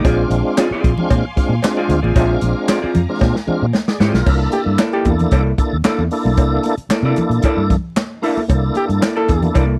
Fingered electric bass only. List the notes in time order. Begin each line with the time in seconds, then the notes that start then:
0.05 A#1
0.30 A#1
0.71 muted fingered electric bass stroke
0.84 A#1
1.11 A#2
1.37 muted fingered electric bass stroke
1.49 A#2
1.89 D2
2.03 A1
2.16 A#1
2.42 A#1
2.84 muted fingered electric bass stroke
2.95 F2
3.22 A#2
3.48 muted fingered electric bass stroke
3.62 A#2
4.00 G#2
4.14 B1
4.27 C2
4.66 G2
5.05 E2
5.32 C2
5.73 D#2
5.86 muted fingered electric bass stroke
5.98 E2
6.25 B1
6.38 C2
6.78 muted fingered electric bass stroke
6.89 muted fingered electric bass stroke
7.03 C3
7.30 A#2
7.44 muted fingered electric bass stroke
7.57 G2
8.49 C2
8.89 G2
9.29 E2
9.56 C2